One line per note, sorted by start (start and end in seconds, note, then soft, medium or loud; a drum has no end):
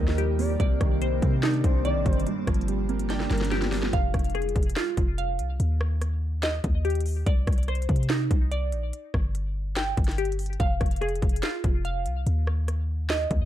0.00 0.57 D#2 loud
0.00 0.61 A#2 loud
0.00 0.60 D#3 medium
0.00 0.17 G3 medium
0.00 0.58 G3 medium
0.00 0.38 A#3 medium
0.00 2.23 A#3 medium
0.00 0.60 D#4 medium
0.00 0.58 G4 medium
0.00 0.36 A#4 medium
0.00 0.58 A#4 medium
0.00 0.60 D#5 loud
0.08 snare medium
0.18 0.60 G3 medium
0.18 0.60 G4 medium
0.18 closed hi-hat medium
0.39 0.60 A#3 medium
0.39 0.59 D5 medium
0.39 open hi-hat medium
0.60 0.80 C2 loud
0.60 1.63 C3 loud
0.60 2.25 C3 medium
0.60 2.25 C4 medium
0.60 1.84 D5 loud
0.60 2.25 D5 loud
0.60 kick loud
0.60 closed hi-hat medium
0.81 1.21 C2 loud
0.81 1.83 D#3 medium
0.81 kick loud
0.81 cross-stick loud
0.81 closed hi-hat medium
1.01 2.04 G3 medium
1.01 2.27 C5 loud
1.01 closed hi-hat medium
1.22 1.62 C3 loud
1.22 2.27 C4 medium
1.22 kick loud
1.22 closed hi-hat medium
1.43 2.27 D4 loud
1.43 2.26 D#4 medium
1.43 snare loud
1.43 closed hi-hat medium
1.54 closed hi-hat soft
1.64 1.97 C2 loud
1.64 2.27 C3 medium
1.64 1.84 C5 medium
1.64 kick loud
1.64 closed hi-hat medium
1.85 2.26 D#3 medium
1.85 2.27 D5 loud
1.85 2.05 D5 loud
1.85 closed hi-hat medium
1.95 2.05 A#1 loud
2.06 2.26 G1 loud
2.06 2.27 G3 medium
2.06 2.26 C5 medium
2.06 kick loud
2.06 closed hi-hat medium
2.13 closed hi-hat medium
2.20 closed hi-hat medium
2.27 3.29 G2 medium
2.27 3.92 G3 medium
2.27 3.92 D4 medium
2.27 3.92 F4 medium
2.27 3.92 A#4 loud
2.27 closed hi-hat medium
2.47 3.27 G1 loud
2.47 3.50 F3 medium
2.47 kick medium
2.47 cross-stick loud
2.47 closed hi-hat medium
2.54 closed hi-hat medium
2.61 closed hi-hat soft
2.68 3.71 G3 medium
2.68 closed hi-hat medium
2.89 3.93 A#3 medium
2.89 closed hi-hat soft
2.99 closed hi-hat medium
3.10 3.93 D4 loud
3.10 3.93 G5 loud
3.10 snare medium
3.10 closed hi-hat medium
3.20 snare medium
3.31 3.91 G1 loud
3.31 3.93 G2 medium
3.31 3.50 A#4 medium
3.31 snare medium
3.31 closed hi-hat soft
3.38 snare medium
3.38 closed hi-hat medium
3.45 closed hi-hat medium
3.51 3.93 F3 medium
3.51 3.93 G4 loud
3.51 snare medium
3.51 closed hi-hat medium
3.62 snare medium
3.62 closed hi-hat medium
3.72 3.93 G3 medium
3.72 snare loud
3.72 open hi-hat medium
3.83 snare loud
3.93 4.13 F1 loud
3.93 5.17 F5 loud
3.93 kick loud
3.93 closed hi-hat medium
4.14 4.54 F1 loud
4.14 kick medium
4.14 cross-stick medium
4.14 closed hi-hat medium
4.19 closed hi-hat medium
4.24 closed hi-hat medium
4.30 closed hi-hat medium
4.35 5.60 G#4 medium
4.35 cross-stick medium
4.35 closed hi-hat soft
4.42 closed hi-hat medium
4.49 closed hi-hat medium
4.56 4.76 F1 loud
4.56 kick loud
4.56 closed hi-hat medium
4.63 closed hi-hat medium
4.70 closed hi-hat medium
4.76 5.60 F4 medium
4.76 snare loud
4.76 closed hi-hat medium
4.97 5.40 F1 loud
4.97 kick loud
4.97 closed hi-hat medium
5.18 5.60 F5 loud
5.18 closed hi-hat medium
5.39 5.59 C2 loud
5.39 closed hi-hat medium
5.60 6.60 D#2 loud
5.60 closed hi-hat medium
5.81 cross-stick loud
6.01 cross-stick medium
6.01 closed hi-hat medium
6.43 7.27 D#5 loud
6.43 snare loud
6.43 closed hi-hat medium
6.64 7.24 D#2 loud
6.64 kick loud
6.64 closed hi-hat medium
6.85 7.27 G4 medium
6.85 closed hi-hat soft
6.90 closed hi-hat medium
6.95 closed hi-hat medium
7.00 closed hi-hat medium
7.06 open hi-hat medium
7.26 7.46 C2 loud
7.26 8.50 D5 loud
7.26 kick loud
7.26 closed hi-hat medium
7.47 7.87 C2 loud
7.47 kick medium
7.47 cross-stick loud
7.47 closed hi-hat medium
7.53 closed hi-hat medium
7.58 closed hi-hat medium
7.63 closed hi-hat medium
7.68 8.93 C5 medium
7.68 cross-stick medium
7.68 closed hi-hat soft
7.75 closed hi-hat medium
7.82 closed hi-hat medium
7.89 8.29 C3 loud
7.89 kick loud
7.89 closed hi-hat medium
7.96 closed hi-hat medium
8.03 closed hi-hat medium
8.10 8.93 D#4 medium
8.10 snare loud
8.10 closed hi-hat medium
8.31 8.74 C2 loud
8.31 kick loud
8.31 closed hi-hat medium
8.52 8.93 D5 loud
8.52 closed hi-hat medium
8.72 8.92 A#1 loud
8.72 closed hi-hat medium
8.93 closed hi-hat medium
9.14 9.94 G1 loud
9.14 kick medium
9.14 cross-stick loud
9.35 closed hi-hat medium
9.77 10.60 G5 loud
9.77 snare loud
9.77 closed hi-hat medium
9.97 10.57 G1 loud
9.97 kick loud
9.97 closed hi-hat medium
10.04 snare medium
10.04 closed hi-hat medium
10.11 closed hi-hat medium
10.18 10.60 G4 medium
10.18 closed hi-hat medium
10.25 closed hi-hat medium
10.32 closed hi-hat medium
10.39 closed hi-hat medium
10.39 open hi-hat medium
10.46 closed hi-hat soft
10.53 closed hi-hat soft
10.60 10.80 F1 loud
10.60 11.84 F5 loud
10.60 kick loud
10.60 closed hi-hat medium
10.81 11.21 F1 loud
10.81 kick loud
10.81 cross-stick medium
10.81 closed hi-hat medium
10.86 closed hi-hat medium
10.91 closed hi-hat medium
10.96 closed hi-hat medium
11.01 12.26 G#4 medium
11.01 cross-stick medium
11.01 closed hi-hat soft
11.08 closed hi-hat medium
11.15 closed hi-hat medium
11.22 11.42 F1 loud
11.22 kick loud
11.22 closed hi-hat medium
11.29 closed hi-hat medium
11.36 closed hi-hat medium
11.43 12.27 F4 medium
11.43 snare loud
11.43 closed hi-hat medium
11.64 12.07 F1 loud
11.64 kick loud
11.64 closed hi-hat medium
11.85 12.26 F5 loud
11.85 closed hi-hat medium
12.06 12.25 C2 loud
12.06 closed hi-hat medium
12.27 13.27 D#2 loud
12.27 closed hi-hat medium
12.47 cross-stick medium
12.68 cross-stick medium
12.68 closed hi-hat medium
13.10 13.45 D#5 loud
13.10 snare loud
13.10 closed hi-hat medium
13.31 13.45 D#2 loud
13.31 kick loud
13.31 closed hi-hat medium